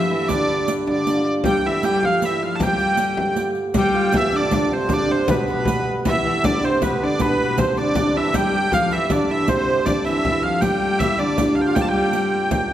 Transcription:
Already playing: harmonium G2 D3, hammered dulcimer D4 G4 A4, hurdy-gurdy E5
0.09 viola da gamba E3, hammered dulcimer E4, hurdy-gurdy E5
0.28 viola da gamba D3, hammered dulcimer D4, hurdy-gurdy D5, riq, frame drum
0.48 hammered dulcimer E4
0.68 riq
0.85 viola da gamba D3, hammered dulcimer D4, hurdy-gurdy D5, frame drum
1.07 riq
1.12 hammered dulcimer F4
1.44 viola da gamba G3, hammered dulcimer G4, hurdy-gurdy G5, riq, frame drum
1.64 viola da gamba E3, hammered dulcimer E4, hurdy-gurdy E5
1.83 viola da gamba G3, hammered dulcimer G4, hurdy-gurdy G5, riq
2.03 viola da gamba F3, hammered dulcimer F4, hurdy-gurdy F5, frame drum
2.22 viola da gamba E3, hammered dulcimer E4, hurdy-gurdy E5, riq
2.41 viola da gamba F3, hammered dulcimer F4, hurdy-gurdy F5
2.56 hurdy-gurdy A5
2.60 viola da gamba G3, hammered dulcimer G4, hurdy-gurdy G5, riq, frame drum
2.66 viola da gamba F3
2.72 viola da gamba G3
2.79 riq
2.97 riq, frame drum
3.17 frame drum
3.36 riq, frame drum
3.55 riq
3.74 harmonium G2 D3, viola da gamba G3, hammered dulcimer G4, riq, frame drum
3.78 hurdy-gurdy G5
3.94 hammered dulcimer F4, frame drum
4.12 viola da gamba E3, riq, frame drum
4.17 hurdy-gurdy E5
4.32 viola da gamba D3, hammered dulcimer D4, riq
4.36 hurdy-gurdy D5
4.41 viola da gamba C3
4.47 viola da gamba D3
4.51 hammered dulcimer D4, riq, frame drum
4.71 viola da gamba C3, hammered dulcimer C4, hurdy-gurdy C5, frame drum
4.89 viola da gamba D3, hammered dulcimer D4, riq, frame drum
4.93 hurdy-gurdy D5
5.08 viola da gamba C3, hammered dulcimer C4, hurdy-gurdy C5, frame drum
5.28 viola da gamba B2, hammered dulcimer B3, hurdy-gurdy B4, riq, frame drum
5.48 viola da gamba B2, hammered dulcimer B3, hurdy-gurdy B4, riq
5.65 riq, frame drum
5.87 frame drum
6.04 viola da gamba E3, hammered dulcimer E4, hurdy-gurdy E5, riq, frame drum
6.22 viola da gamba E3, hammered dulcimer E4, frame drum
6.41 viola da gamba D3, hammered dulcimer D4, hurdy-gurdy D5, riq, frame drum
6.60 viola da gamba C3, hammered dulcimer C4, riq
6.65 hurdy-gurdy C5
6.79 viola da gamba B2, hammered dulcimer B3, hurdy-gurdy B4, riq, frame drum
6.99 viola da gamba D3, hammered dulcimer D4, frame drum
7.03 hurdy-gurdy D5
7.19 viola da gamba B2, hammered dulcimer B3, hurdy-gurdy B4, riq, frame drum
7.39 viola da gamba B2, frame drum
7.58 hammered dulcimer C4, hurdy-gurdy C5, riq, frame drum
7.77 viola da gamba D3, hammered dulcimer D4, hurdy-gurdy D5, riq
7.95 hammered dulcimer D4, riq, frame drum
8.15 viola da gamba E3, hammered dulcimer E4, hurdy-gurdy E5
8.34 harmonium G2 D3, viola da gamba G3, hammered dulcimer G4, hurdy-gurdy G5, riq, frame drum
8.53 hammered dulcimer G4, frame drum
8.72 viola da gamba F3, hammered dulcimer F4, hurdy-gurdy F5, riq, frame drum
8.90 viola da gamba E3, hammered dulcimer E4, hurdy-gurdy E5, riq
9.09 viola da gamba D3, hammered dulcimer D4, hurdy-gurdy D5, riq, frame drum
9.29 viola da gamba E3, hammered dulcimer E4, hurdy-gurdy E5, frame drum
9.47 viola da gamba C3, hammered dulcimer C4, hurdy-gurdy C5, riq, frame drum
9.66 viola da gamba C3, frame drum
9.85 viola da gamba D3, hammered dulcimer D4, hurdy-gurdy D5, riq, frame drum
10.05 viola da gamba E3, hammered dulcimer E4, hurdy-gurdy E5, riq
10.19 hammered dulcimer E4
10.24 viola da gamba E3, frame drum
10.32 hammered dulcimer E4
10.43 viola da gamba F3, hammered dulcimer F4, hurdy-gurdy F5, frame drum
10.61 viola da gamba G3, hammered dulcimer G4, hurdy-gurdy G5, riq, frame drum
10.81 frame drum
10.99 hammered dulcimer E4, hurdy-gurdy E5, riq, frame drum
11.19 viola da gamba D3, hammered dulcimer D4, hurdy-gurdy D5, riq
11.38 hammered dulcimer E4, riq, frame drum
11.55 hammered dulcimer F4, hurdy-gurdy F5, frame drum
11.61 hurdy-gurdy G5
11.66 hammered dulcimer F4, hurdy-gurdy F5
11.75 viola da gamba G3, hammered dulcimer G4, hurdy-gurdy G5, riq, frame drum
11.81 hurdy-gurdy A5
11.88 viola da gamba G3, hammered dulcimer G4, hurdy-gurdy G5
12.13 riq
12.51 riq, frame drum

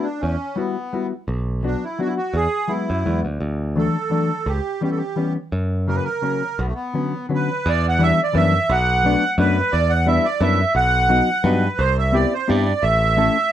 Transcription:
0.03 accordion D4
0.21 picked electric bass E2, accordion C#4
0.55 hollow-body jazz guitar G3 B3 E4 F#4, accordion B3
0.93 hollow-body jazz guitar G3 B3 E4 F#4
1.28 picked electric bass B1
1.63 hollow-body jazz guitar F#3 B3 D4 F#4, accordion D4
1.84 accordion E4
1.99 hollow-body jazz guitar F#3 B3 D4 F#4, accordion F#4
2.06 accordion E4
2.17 accordion F#4
2.34 picked electric bass E2, accordion G#4
2.68 hollow-body jazz guitar F#3 G#3 B3 E4, accordion E4
2.90 picked electric bass F#2
3.05 picked electric bass E2, hollow-body jazz guitar F#3 G#3 B3 E4
3.25 picked electric bass D2
3.40 picked electric bass D2
3.75 hollow-body jazz guitar E3 F#3 A3 D4, accordion A4
4.10 hollow-body jazz guitar E3 F#3 A3 D4
4.46 picked electric bass C#2, accordion G4
4.81 hollow-body jazz guitar E3 G3 B3 C#4, accordion G4
4.91 accordion A4
4.97 accordion G4
5.16 hollow-body jazz guitar E3 G3 B3 C#4
5.52 picked electric bass F#2
5.88 hollow-body jazz guitar C#3 F#3 A#3 C#4, accordion A#4
5.96 accordion B4
6.04 accordion A#4
6.22 hollow-body jazz guitar C#3 F#3 A#3 C#4
6.59 picked electric bass B1, accordion B3
6.66 accordion A3
6.75 accordion B3
6.94 hollow-body jazz guitar D3 F#3 B3 C#4
7.29 hollow-body jazz guitar D3 F#3 B3 C#4
7.34 accordion B4
7.66 picked electric bass E2, accordion D5
7.89 accordion F#5
7.99 hollow-body jazz guitar E3 G3 B3 D4
8.03 accordion E5
8.23 accordion D5
8.33 picked electric bass F#2, hollow-body jazz guitar E3 G3 B3 D4, accordion E5
8.70 picked electric bass B1, accordion F#5
9.04 hollow-body jazz guitar F#3 A3 B3 D4
9.38 picked electric bass F#2, hollow-body jazz guitar F#3 A3 B3 D4, accordion B4
9.72 picked electric bass E2, accordion D5
9.90 accordion F#5
10.06 hollow-body jazz guitar G3 B3 D4 E4, accordion E5
10.25 accordion D5
10.40 picked electric bass F#2, hollow-body jazz guitar G3 B3 D4 E4, accordion E5
10.75 picked electric bass B1, accordion F#5
11.09 hollow-body jazz guitar F#3 B3 D#4 F#4
11.44 picked electric bass G2, hollow-body jazz guitar F#3 B3 D#4 F#4, accordion B4
11.78 picked electric bass C2, accordion C5
11.99 accordion E5
12.12 hollow-body jazz guitar B3 C4 E4 G4, accordion D5
12.34 accordion C5
12.48 picked electric bass G2, hollow-body jazz guitar B3 C4 E4 G4, accordion D5
12.83 picked electric bass A1, accordion E5
13.17 hollow-body jazz guitar A3 C#4 E4 A4

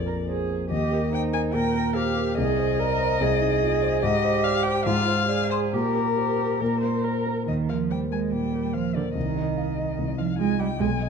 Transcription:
Already playing: grand piano A#1 F2 A#4 C5, violin D5
0.06 grand piano A#4, cello A#4
0.27 cello G#4, grand piano C5
0.49 grand piano A#4
0.71 grand piano D#2, cello G4, violin D#5
0.92 grand piano A#4
1.12 cello D#4, grand piano C5, violin G5
1.33 grand piano A#4, violin G#5
1.53 grand piano A#2, cello A#4, violin G5
1.95 cello G4, grand piano C5, violin F5
2.17 grand piano A#4
2.37 grand piano C2, cello G#4, violin D#5
2.58 grand piano C5
2.79 cello A#4, grand piano D5
3.00 grand piano C5
3.20 grand piano C2, cello G#4
3.41 grand piano D#4
3.62 grand piano F4
3.83 grand piano C5
4.03 grand piano G#2, cello G4, violin D#5
4.24 grand piano C5
4.44 grand piano D5, violin F5
4.63 grand piano C5, violin G5
4.85 grand piano G#2, cello F4, violin F5
5.07 grand piano C5
5.28 cello G#4, grand piano D5
5.51 violin C5, grand piano C5
5.73 grand piano A#2, cello G4, violin A#4
5.95 grand piano A#4
6.15 cello G4, grand piano C5
6.60 grand piano A#2, cello A#4
6.81 grand piano A#4, cello C5
7.04 cello A#4, grand piano C5
7.48 grand piano D#2, cello D#3, violin D#5
7.69 cello F3, grand piano A#4, violin F5
7.90 cello G3, grand piano C5, violin G5
8.11 cello G#3, grand piano A#4, violin G#5
8.32 grand piano A#2, cello G3, violin G5
8.53 grand piano A#4
8.74 cello F3, grand piano C5, violin F5
8.95 cello D3, grand piano A#4, violin D5
9.15 grand piano C2, cello D#3, violin D#5
9.36 grand piano D#5
9.57 grand piano F5
9.78 grand piano D#5
9.98 grand piano C2
10.18 cello F3, grand piano D#4, violin F5
10.39 cello G#3, grand piano F4, violin G#5
10.59 cello G3, grand piano D#5, violin G5
10.79 grand piano B1, cello G#3, violin G#5
11.01 grand piano D#5

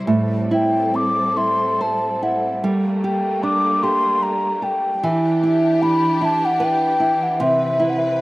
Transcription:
Already playing: string section G3, nylon-string guitar C4 E4 C5
0.05 nylon-string guitar A2, string section C4 A4
0.51 nylon-string guitar E4, flute G5
0.94 nylon-string guitar C4, flute D6
1.37 nylon-string guitar E4, flute C6
1.81 nylon-string guitar C5, flute A5
2.23 nylon-string guitar E4, flute F#5
2.63 nylon-string guitar G3, string section A3 A#3
3.04 nylon-string guitar G4, flute G5
3.43 nylon-string guitar D4, flute D6
3.83 nylon-string guitar G4, flute C6
4.23 flute A#5
4.62 nylon-string guitar G4, flute G5
4.99 string section E3 D4 G4
5.03 nylon-string guitar E3
5.43 nylon-string guitar E4, flute E5
5.82 nylon-string guitar D4, flute B5
6.21 nylon-string guitar E4, flute A5
6.45 flute F#5
6.60 nylon-string guitar B4
6.65 flute G5
7.00 nylon-string guitar E4
7.23 flute F#5
7.37 nylon-string guitar C3, string section C4 B4
7.43 flute E5
7.79 nylon-string guitar E4
7.90 flute F#5
7.98 flute E5

